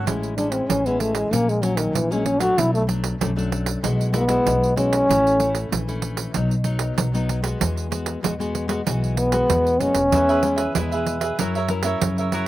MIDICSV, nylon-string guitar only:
0, 0, Header, 1, 2, 480
1, 0, Start_track
1, 0, Key_signature, 3, "major"
1, 0, Tempo, 629591
1, 48, Time_signature, 4, 2, 24, 8
1, 9512, End_track
2, 0, Start_track
2, 0, Title_t, "Nylon-string guitar"
2, 0, Program_c, 0, 24
2, 53, Note_on_c, 0, 45, 48
2, 55, Note_on_c, 0, 56, 50
2, 60, Note_on_c, 0, 64, 56
2, 62, Note_on_c, 0, 61, 49
2, 252, Note_off_c, 0, 56, 0
2, 254, Note_off_c, 0, 61, 0
2, 255, Note_off_c, 0, 64, 0
2, 288, Note_on_c, 0, 56, 48
2, 291, Note_on_c, 0, 61, 49
2, 296, Note_on_c, 0, 64, 53
2, 507, Note_off_c, 0, 45, 0
2, 530, Note_on_c, 0, 52, 59
2, 609, Note_off_c, 0, 56, 0
2, 611, Note_off_c, 0, 61, 0
2, 613, Note_off_c, 0, 64, 0
2, 656, Note_on_c, 0, 56, 59
2, 663, Note_on_c, 0, 61, 53
2, 663, Note_on_c, 0, 64, 59
2, 973, Note_off_c, 0, 56, 0
2, 975, Note_off_c, 0, 61, 0
2, 976, Note_off_c, 0, 64, 0
2, 984, Note_off_c, 0, 52, 0
2, 1007, Note_on_c, 0, 54, 50
2, 1009, Note_on_c, 0, 46, 59
2, 1009, Note_on_c, 0, 58, 55
2, 1014, Note_on_c, 0, 61, 62
2, 1147, Note_off_c, 0, 54, 0
2, 1149, Note_off_c, 0, 58, 0
2, 1150, Note_off_c, 0, 61, 0
2, 1233, Note_on_c, 0, 54, 55
2, 1236, Note_on_c, 0, 58, 55
2, 1241, Note_on_c, 0, 61, 62
2, 1463, Note_off_c, 0, 46, 0
2, 1464, Note_off_c, 0, 54, 0
2, 1466, Note_off_c, 0, 58, 0
2, 1467, Note_off_c, 0, 61, 0
2, 1473, Note_on_c, 0, 46, 54
2, 1606, Note_on_c, 0, 54, 57
2, 1609, Note_on_c, 0, 58, 56
2, 1612, Note_on_c, 0, 61, 66
2, 1807, Note_off_c, 0, 54, 0
2, 1808, Note_off_c, 0, 58, 0
2, 1810, Note_off_c, 0, 61, 0
2, 1825, Note_on_c, 0, 54, 60
2, 1830, Note_on_c, 0, 57, 63
2, 1833, Note_on_c, 0, 62, 61
2, 1935, Note_off_c, 0, 46, 0
2, 1956, Note_on_c, 0, 47, 47
2, 2157, Note_off_c, 0, 54, 0
2, 2158, Note_off_c, 0, 57, 0
2, 2161, Note_off_c, 0, 62, 0
2, 2188, Note_on_c, 0, 54, 46
2, 2193, Note_on_c, 0, 57, 45
2, 2198, Note_on_c, 0, 62, 50
2, 2398, Note_off_c, 0, 54, 0
2, 2401, Note_off_c, 0, 57, 0
2, 2401, Note_off_c, 0, 62, 0
2, 2416, Note_off_c, 0, 47, 0
2, 2443, Note_on_c, 0, 42, 59
2, 2447, Note_on_c, 0, 54, 57
2, 2449, Note_on_c, 0, 57, 53
2, 2451, Note_on_c, 0, 62, 60
2, 2517, Note_off_c, 0, 54, 0
2, 2519, Note_off_c, 0, 57, 0
2, 2519, Note_off_c, 0, 62, 0
2, 2563, Note_on_c, 0, 54, 55
2, 2566, Note_on_c, 0, 57, 58
2, 2571, Note_on_c, 0, 62, 65
2, 2885, Note_off_c, 0, 54, 0
2, 2887, Note_off_c, 0, 57, 0
2, 2888, Note_off_c, 0, 62, 0
2, 2900, Note_off_c, 0, 42, 0
2, 2919, Note_on_c, 0, 47, 57
2, 2923, Note_on_c, 0, 56, 64
2, 2924, Note_on_c, 0, 64, 58
2, 2929, Note_on_c, 0, 66, 60
2, 3125, Note_off_c, 0, 56, 0
2, 3126, Note_off_c, 0, 64, 0
2, 3127, Note_off_c, 0, 66, 0
2, 3145, Note_on_c, 0, 56, 58
2, 3150, Note_on_c, 0, 64, 59
2, 3152, Note_on_c, 0, 66, 68
2, 3227, Note_off_c, 0, 56, 0
2, 3228, Note_off_c, 0, 64, 0
2, 3230, Note_off_c, 0, 66, 0
2, 3263, Note_on_c, 0, 56, 63
2, 3265, Note_on_c, 0, 64, 62
2, 3271, Note_on_c, 0, 66, 60
2, 3378, Note_off_c, 0, 47, 0
2, 3397, Note_on_c, 0, 47, 56
2, 3596, Note_off_c, 0, 56, 0
2, 3596, Note_off_c, 0, 64, 0
2, 3597, Note_off_c, 0, 66, 0
2, 3630, Note_on_c, 0, 56, 56
2, 3633, Note_on_c, 0, 64, 62
2, 3639, Note_on_c, 0, 66, 58
2, 3856, Note_off_c, 0, 47, 0
2, 3858, Note_off_c, 0, 56, 0
2, 3860, Note_off_c, 0, 64, 0
2, 3861, Note_off_c, 0, 66, 0
2, 3880, Note_on_c, 0, 45, 54
2, 3885, Note_on_c, 0, 57, 57
2, 3888, Note_on_c, 0, 61, 54
2, 3888, Note_on_c, 0, 64, 56
2, 4086, Note_off_c, 0, 57, 0
2, 4086, Note_off_c, 0, 61, 0
2, 4088, Note_off_c, 0, 64, 0
2, 4111, Note_on_c, 0, 57, 51
2, 4114, Note_on_c, 0, 61, 52
2, 4119, Note_on_c, 0, 64, 54
2, 4338, Note_off_c, 0, 45, 0
2, 4360, Note_on_c, 0, 52, 59
2, 4440, Note_off_c, 0, 57, 0
2, 4440, Note_off_c, 0, 61, 0
2, 4441, Note_off_c, 0, 64, 0
2, 4484, Note_on_c, 0, 57, 58
2, 4487, Note_on_c, 0, 61, 57
2, 4489, Note_on_c, 0, 64, 68
2, 4805, Note_off_c, 0, 57, 0
2, 4806, Note_off_c, 0, 61, 0
2, 4808, Note_off_c, 0, 64, 0
2, 4818, Note_off_c, 0, 52, 0
2, 4841, Note_on_c, 0, 47, 57
2, 4843, Note_on_c, 0, 54, 58
2, 4846, Note_on_c, 0, 59, 58
2, 4848, Note_on_c, 0, 63, 62
2, 4984, Note_off_c, 0, 54, 0
2, 4984, Note_off_c, 0, 59, 0
2, 4987, Note_off_c, 0, 63, 0
2, 5063, Note_on_c, 0, 54, 60
2, 5067, Note_on_c, 0, 59, 56
2, 5070, Note_on_c, 0, 63, 67
2, 5299, Note_off_c, 0, 47, 0
2, 5302, Note_off_c, 0, 54, 0
2, 5311, Note_on_c, 0, 54, 60
2, 5397, Note_off_c, 0, 59, 0
2, 5398, Note_off_c, 0, 63, 0
2, 5433, Note_off_c, 0, 54, 0
2, 5442, Note_on_c, 0, 54, 63
2, 5447, Note_on_c, 0, 59, 61
2, 5451, Note_on_c, 0, 63, 64
2, 5644, Note_off_c, 0, 54, 0
2, 5647, Note_off_c, 0, 59, 0
2, 5648, Note_off_c, 0, 63, 0
2, 5660, Note_on_c, 0, 56, 54
2, 5666, Note_on_c, 0, 59, 63
2, 5670, Note_on_c, 0, 66, 58
2, 5796, Note_on_c, 0, 52, 52
2, 5993, Note_off_c, 0, 56, 0
2, 5997, Note_off_c, 0, 59, 0
2, 5997, Note_off_c, 0, 66, 0
2, 6028, Note_on_c, 0, 56, 48
2, 6034, Note_on_c, 0, 59, 53
2, 6037, Note_on_c, 0, 66, 57
2, 6237, Note_off_c, 0, 56, 0
2, 6240, Note_off_c, 0, 59, 0
2, 6242, Note_off_c, 0, 66, 0
2, 6256, Note_off_c, 0, 52, 0
2, 6273, Note_on_c, 0, 47, 55
2, 6273, Note_on_c, 0, 56, 62
2, 6279, Note_on_c, 0, 59, 61
2, 6281, Note_on_c, 0, 66, 67
2, 6350, Note_off_c, 0, 56, 0
2, 6353, Note_off_c, 0, 59, 0
2, 6353, Note_off_c, 0, 66, 0
2, 6402, Note_on_c, 0, 56, 62
2, 6403, Note_on_c, 0, 59, 59
2, 6405, Note_on_c, 0, 66, 65
2, 6605, Note_off_c, 0, 56, 0
2, 6605, Note_off_c, 0, 59, 0
2, 6605, Note_off_c, 0, 66, 0
2, 6617, Note_on_c, 0, 56, 66
2, 6621, Note_on_c, 0, 59, 58
2, 6624, Note_on_c, 0, 66, 67
2, 6712, Note_off_c, 0, 56, 0
2, 6714, Note_off_c, 0, 59, 0
2, 6716, Note_off_c, 0, 66, 0
2, 6735, Note_off_c, 0, 47, 0
2, 6755, Note_on_c, 0, 52, 57
2, 6757, Note_on_c, 0, 56, 58
2, 6759, Note_on_c, 0, 59, 52
2, 6764, Note_on_c, 0, 66, 65
2, 7081, Note_off_c, 0, 56, 0
2, 7083, Note_off_c, 0, 59, 0
2, 7085, Note_off_c, 0, 66, 0
2, 7107, Note_on_c, 0, 56, 59
2, 7110, Note_on_c, 0, 59, 65
2, 7115, Note_on_c, 0, 66, 73
2, 7216, Note_off_c, 0, 52, 0
2, 7240, Note_on_c, 0, 47, 53
2, 7437, Note_off_c, 0, 56, 0
2, 7439, Note_off_c, 0, 59, 0
2, 7440, Note_off_c, 0, 66, 0
2, 7474, Note_on_c, 0, 56, 52
2, 7477, Note_on_c, 0, 59, 55
2, 7481, Note_on_c, 0, 66, 57
2, 7634, Note_off_c, 0, 56, 0
2, 7635, Note_off_c, 0, 59, 0
2, 7637, Note_off_c, 0, 66, 0
2, 7698, Note_off_c, 0, 47, 0
2, 7726, Note_on_c, 0, 52, 49
2, 7728, Note_on_c, 0, 56, 48
2, 7730, Note_on_c, 0, 59, 58
2, 7732, Note_on_c, 0, 64, 59
2, 7927, Note_off_c, 0, 56, 0
2, 7929, Note_off_c, 0, 59, 0
2, 7929, Note_off_c, 0, 64, 0
2, 7956, Note_on_c, 0, 56, 48
2, 7960, Note_on_c, 0, 59, 51
2, 7963, Note_on_c, 0, 64, 62
2, 8102, Note_off_c, 0, 56, 0
2, 8103, Note_off_c, 0, 59, 0
2, 8105, Note_off_c, 0, 64, 0
2, 8182, Note_off_c, 0, 52, 0
2, 8204, Note_on_c, 0, 47, 59
2, 8208, Note_on_c, 0, 56, 54
2, 8210, Note_on_c, 0, 59, 53
2, 8215, Note_on_c, 0, 64, 70
2, 8514, Note_off_c, 0, 56, 0
2, 8516, Note_off_c, 0, 59, 0
2, 8519, Note_off_c, 0, 64, 0
2, 8661, Note_off_c, 0, 47, 0
2, 8684, Note_on_c, 0, 54, 60
2, 8687, Note_on_c, 0, 61, 56
2, 8691, Note_on_c, 0, 70, 62
2, 8692, Note_on_c, 0, 64, 62
2, 8827, Note_off_c, 0, 61, 0
2, 8827, Note_off_c, 0, 64, 0
2, 8829, Note_off_c, 0, 70, 0
2, 8913, Note_on_c, 0, 61, 52
2, 8916, Note_on_c, 0, 64, 63
2, 8917, Note_on_c, 0, 70, 64
2, 9001, Note_off_c, 0, 61, 0
2, 9001, Note_off_c, 0, 64, 0
2, 9003, Note_off_c, 0, 70, 0
2, 9027, Note_on_c, 0, 61, 66
2, 9030, Note_on_c, 0, 64, 59
2, 9033, Note_on_c, 0, 70, 58
2, 9142, Note_off_c, 0, 54, 0
2, 9173, Note_on_c, 0, 49, 57
2, 9358, Note_off_c, 0, 61, 0
2, 9359, Note_off_c, 0, 64, 0
2, 9361, Note_off_c, 0, 70, 0
2, 9405, Note_on_c, 0, 61, 56
2, 9407, Note_on_c, 0, 64, 53
2, 9413, Note_on_c, 0, 70, 65
2, 9512, Note_off_c, 0, 49, 0
2, 9512, Note_off_c, 0, 61, 0
2, 9512, Note_off_c, 0, 64, 0
2, 9512, Note_off_c, 0, 70, 0
2, 9512, End_track
0, 0, End_of_file